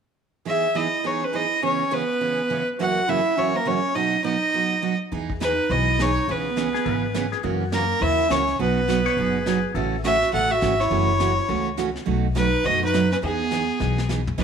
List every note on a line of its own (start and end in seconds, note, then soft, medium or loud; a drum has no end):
0.45 0.66 E3 medium
0.45 0.66 B3 medium
0.45 0.66 D#4 medium
0.45 0.66 G#4 medium
0.45 0.78 G#4 medium
0.45 0.78 E5 medium
0.75 0.86 E3 medium
0.75 0.86 B3 medium
0.75 0.87 D#4 medium
0.75 1.07 E4 medium
0.75 0.87 G#4 medium
0.75 1.08 D#5 medium
1.04 1.24 E3 medium
1.04 1.24 B3 soft
1.04 1.24 D#4 medium
1.04 1.25 G#4 medium
1.04 1.25 C#5 medium
1.23 1.35 C#4 medium
1.23 1.37 B4 medium
1.33 1.44 E3 medium
1.33 1.45 B3 medium
1.33 1.45 D#4 medium
1.33 1.62 E4 medium
1.33 1.45 G#4 medium
1.33 1.63 D#5 medium
1.62 1.82 C#3 medium
1.62 1.82 E3 medium
1.62 1.83 B3 medium
1.62 1.94 C#4 medium
1.62 1.83 C#4 medium
1.62 1.83 G#4 medium
1.62 1.95 C#5 medium
1.91 2.02 C#3 medium
1.91 2.03 E3 medium
1.91 2.03 B3 medium
1.91 2.68 B3 medium
1.91 2.03 C#4 medium
1.91 2.03 G#4 medium
1.91 2.69 B4 loud
2.21 2.41 C#3 soft
2.21 2.41 E3 medium
2.21 2.41 B3 soft
2.21 2.41 C#4 medium
2.21 2.41 G#4 medium
2.50 2.61 C#3 medium
2.50 2.61 E3 medium
2.50 2.61 B3 medium
2.50 2.61 C#4 medium
2.50 2.61 G#4 medium
2.79 2.99 F#2 medium
2.79 2.99 C#3 medium
2.79 2.99 E3 medium
2.79 2.99 A#3 medium
2.79 2.99 C#4 medium
2.79 3.10 F#4 medium
2.79 2.99 F#4 medium
2.79 3.11 F#5 medium
3.08 3.19 F#2 medium
3.08 3.19 C#3 medium
3.08 3.19 E3 medium
3.08 3.19 A#3 medium
3.08 3.20 C#4 medium
3.08 3.38 E4 medium
3.08 3.20 F#4 medium
3.08 3.40 E5 medium
3.37 3.57 F#2 soft
3.37 3.57 C#3 soft
3.37 3.57 E3 soft
3.37 3.57 A#3 medium
3.37 3.56 C#4 medium
3.37 3.57 C#4 medium
3.37 3.57 F#4 soft
3.37 3.57 C#5 medium
3.55 3.68 A#3 medium
3.55 3.69 A#4 medium
3.65 3.77 F#2 medium
3.65 3.77 C#3 medium
3.65 3.77 E3 medium
3.65 3.77 A#3 medium
3.65 3.77 C#4 medium
3.65 3.97 C#4 medium
3.65 3.77 F#4 medium
3.65 3.97 C#5 medium
3.95 4.15 B2 medium
3.95 4.15 F#3 medium
3.95 4.15 B3 medium
3.95 4.23 D#4 medium
3.95 4.15 D#4 medium
3.95 4.15 F#4 medium
3.95 4.24 D#5 medium
4.23 4.35 B2 medium
4.23 4.35 F#3 medium
4.23 4.35 B3 medium
4.23 4.96 D#4 medium
4.23 4.35 D#4 medium
4.23 4.36 F#4 medium
4.23 4.96 D#5 medium
4.54 4.73 B2 medium
4.54 4.73 F#3 soft
4.54 4.74 B3 medium
4.54 4.74 D#4 soft
4.54 4.74 F#4 medium
4.82 4.93 B2 medium
4.82 4.93 F#3 medium
4.82 4.93 B3 medium
4.82 4.94 D#4 medium
4.82 4.94 F#4 medium
5.12 5.58 E2 medium
5.12 5.31 E3 medium
5.12 5.32 B3 medium
5.12 5.32 D#4 medium
5.12 5.32 G#4 medium
5.12 brush sweep soft
5.30 kick medium
5.40 5.51 E3 medium
5.40 5.52 B3 medium
5.40 5.71 D#4 medium
5.40 5.52 D#4 medium
5.40 5.52 G#4 medium
5.40 5.73 B4 medium
5.40 snare medium
5.40 hi-hat pedal medium
5.70 6.16 B1 medium
5.70 5.89 E3 soft
5.70 5.90 B3 medium
5.70 5.90 D#4 medium
5.70 6.02 E4 medium
5.70 5.90 G#4 medium
5.70 6.03 D#5 medium
5.70 brush sweep soft
5.99 6.10 E3 medium
5.99 6.10 B3 medium
5.99 6.10 D#4 medium
5.99 6.30 D#4 medium
5.99 6.10 G#4 medium
5.99 6.32 C#5 loud
5.99 snare medium
5.99 hi-hat pedal medium
6.28 6.74 C#2 medium
6.28 6.48 C#3 medium
6.28 6.48 E3 medium
6.28 7.33 B3 medium
6.28 6.48 B3 medium
6.28 6.48 C#4 medium
6.28 6.48 G#4 medium
6.28 7.34 B4 medium
6.28 brush sweep soft
6.56 6.67 C#3 medium
6.56 6.68 E3 medium
6.56 6.68 B3 medium
6.56 6.68 C#4 medium
6.56 6.68 G#4 medium
6.56 snare medium
6.56 hi-hat pedal soft
6.74 6.85 G#4 medium
6.74 snare soft
6.85 7.32 G#1 medium
6.85 7.05 C#3 soft
6.85 7.05 E3 medium
6.85 7.05 B3 medium
6.85 7.05 C#4 medium
6.85 7.06 G#4 medium
6.85 7.30 B4 medium
6.85 brush sweep soft
7.14 7.25 C#3 medium
7.14 7.26 E3 medium
7.14 7.26 B3 medium
7.14 7.26 C#4 medium
7.14 7.26 G#4 medium
7.14 snare medium
7.14 hi-hat pedal soft
7.32 7.43 G#4 medium
7.32 snare soft
7.43 7.90 F#2 medium
7.43 7.63 C#3 medium
7.43 7.63 E3 medium
7.43 7.63 A#3 medium
7.43 7.63 C#4 medium
7.43 7.66 F#4 medium
7.43 7.63 F#4 medium
7.43 brush sweep soft
7.72 7.83 C#3 medium
7.72 7.83 E3 medium
7.72 7.84 A#3 medium
7.72 8.02 A#3 medium
7.72 7.84 C#4 medium
7.72 7.84 F#4 medium
7.72 8.03 A#4 medium
7.72 snare medium
7.72 hi-hat pedal medium
8.01 8.26 D#2 medium
8.01 8.21 C#3 medium
8.01 8.21 E3 medium
8.01 8.21 A#3 soft
8.01 8.21 C#4 soft
8.01 8.31 E4 medium
8.01 8.21 F#4 medium
8.01 8.32 E5 loud
8.01 brush sweep soft
8.30 8.55 C#2 medium
8.30 8.41 C#3 medium
8.30 8.41 E3 medium
8.30 8.42 A#3 medium
8.30 8.59 C#4 medium
8.30 8.42 C#4 medium
8.30 8.42 F#4 medium
8.30 8.60 C#5 medium
8.30 snare medium
8.30 hi-hat pedal medium
8.48 snare soft
8.59 9.06 B1 medium
8.59 8.79 B2 medium
8.59 8.79 F#3 medium
8.59 9.60 B3 medium
8.59 8.79 B3 medium
8.59 8.79 D#4 medium
8.59 8.79 F#4 medium
8.59 9.61 B4 medium
8.59 brush sweep soft
8.88 8.99 B2 medium
8.88 8.99 F#3 medium
8.88 8.99 B3 medium
8.88 8.99 D#4 medium
8.88 9.00 F#4 medium
8.88 snare medium
8.88 hi-hat pedal medium
9.06 9.17 C#5 medium
9.06 snare soft
9.17 9.63 F#1 medium
9.17 9.37 B2 soft
9.17 9.37 F#3 medium
9.17 9.37 B3 medium
9.17 9.37 D#4 medium
9.17 9.38 F#4 soft
9.17 9.45 G#4 medium
9.17 brush sweep medium
9.46 9.57 B2 medium
9.46 9.57 F#3 medium
9.46 9.58 B3 medium
9.46 9.58 D#4 medium
9.46 9.58 F#4 medium
9.46 9.74 G#4 medium
9.46 snare medium
9.46 hi-hat pedal medium
9.74 10.21 A1 medium
9.74 9.95 C#3 medium
9.74 9.95 E3 medium
9.74 9.95 A3 medium
9.74 9.95 C#4 medium
9.74 9.95 F#4 medium
9.74 9.98 A4 medium
9.74 brush sweep soft
10.04 10.15 C#3 medium
10.04 10.15 E3 medium
10.04 10.15 A3 medium
10.04 10.16 C#4 medium
10.04 10.15 F#4 medium
10.04 10.31 F#4 medium
10.04 10.31 E5 loud
10.04 snare medium
10.04 hi-hat pedal medium
10.22 snare soft
10.32 10.58 A1 medium
10.32 10.52 C#3 medium
10.32 10.53 E3 soft
10.32 10.53 A3 soft
10.32 10.53 C#4 medium
10.32 10.53 F#4 medium
10.32 10.53 A4 medium
10.32 10.52 F#5 loud
10.32 brush sweep soft
10.51 10.82 F#4 medium
10.51 10.81 E5 medium
10.61 10.87 G#1 medium
10.61 10.73 C#3 medium
10.61 10.73 E3 medium
10.61 10.73 A3 medium
10.61 10.73 C#4 medium
10.61 10.73 F#4 medium
10.61 snare medium
10.61 hi-hat pedal medium
10.80 11.67 E4 medium
10.80 11.67 C#5 medium
10.80 snare soft
10.90 11.37 F#1 medium
10.90 11.10 C#3 medium
10.90 11.10 E3 medium
10.90 11.11 A3 medium
10.90 11.11 C#4 medium
10.90 11.11 F#4 medium
10.90 brush sweep soft
11.20 11.31 C#3 medium
11.20 11.31 E3 medium
11.20 11.31 A3 medium
11.20 11.31 C#4 medium
11.20 11.31 F#4 medium
11.20 snare medium
11.20 hi-hat pedal medium
11.48 11.95 C#2 medium
11.48 11.68 C#3 soft
11.48 11.68 E3 soft
11.48 11.69 A3 medium
11.48 11.69 C#4 medium
11.48 11.69 F#4 medium
11.48 brush sweep soft
11.77 11.89 C#3 medium
11.77 11.89 E3 medium
11.77 11.89 A3 medium
11.77 11.89 C#4 medium
11.77 11.89 F#4 medium
11.77 snare medium
11.77 hi-hat pedal medium
11.96 snare soft
12.06 12.53 B1 medium
12.06 12.26 B2 medium
12.06 12.26 F#3 medium
12.06 12.26 A3 medium
12.06 12.26 D#4 medium
12.06 12.26 F#4 medium
12.06 brush sweep soft
12.35 12.46 B2 medium
12.35 12.46 F#3 medium
12.35 12.46 A3 medium
12.35 12.67 D#4 medium
12.35 12.47 D#4 medium
12.35 12.47 F#4 medium
12.35 12.67 B4 medium
12.35 snare medium
12.35 hi-hat pedal medium
12.64 13.11 F#2 medium
12.64 12.84 B2 soft
12.64 12.84 F#3 soft
12.64 12.84 A3 medium
12.64 12.84 D#4 medium
12.64 12.84 F#4 medium
12.64 12.83 F#4 medium
12.64 12.83 D#5 loud
12.64 brush sweep medium
12.83 13.10 D#4 medium
12.83 13.11 B4 loud
12.93 13.04 B2 medium
12.93 13.05 F#3 medium
12.93 13.05 A3 medium
12.93 13.05 D#4 medium
12.93 13.05 F#4 medium
12.93 snare medium
12.93 hi-hat pedal medium
13.11 13.17 C#4 medium
13.11 13.17 B4 medium
13.11 snare soft
13.22 13.69 E2 medium
13.22 13.42 E3 medium
13.22 13.42 B3 medium
13.22 14.06 B3 medium
13.22 13.42 D#4 medium
13.22 13.42 G#4 medium
13.22 14.06 G#4 medium
13.22 brush sweep soft
13.51 13.62 E3 medium
13.51 13.62 B3 medium
13.51 13.62 D#4 medium
13.51 13.63 G#4 medium
13.51 snare medium
13.51 hi-hat pedal medium
13.79 14.26 B1 medium
13.79 14.00 E3 soft
13.79 14.00 B3 medium
13.79 14.00 D#4 soft
13.79 14.00 G#4 medium
13.79 snare soft
13.98 snare medium
14.09 14.20 E3 medium
14.09 14.20 B3 medium
14.09 14.20 D#4 medium
14.09 14.20 G#4 medium
14.09 snare medium
14.09 hi-hat pedal soft
14.27 floor tom medium
14.38 14.44 B2 medium
14.38 14.44 D#3 medium
14.38 14.44 F#3 medium
14.38 14.44 B3 medium
14.38 14.44 C#4 medium
14.38 14.44 D#4 medium
14.38 14.44 B4 medium
14.38 brush sweep soft
14.38 kick medium
14.38 snare soft
14.38 crash medium